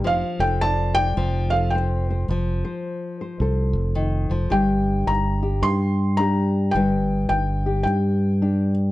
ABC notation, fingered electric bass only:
X:1
M:4/4
L:1/16
Q:"Swing" 1/4=108
K:Gm
V:1 name="Fingered electric bass" clef=bass
F,,, z F,,,6 F,,,8 | F,,,2 z6 C,,2 F,,,4 F,,,2 | G,,,4 G,,,4 G,,8 | G,,,4 G,,,4 G,,8 |]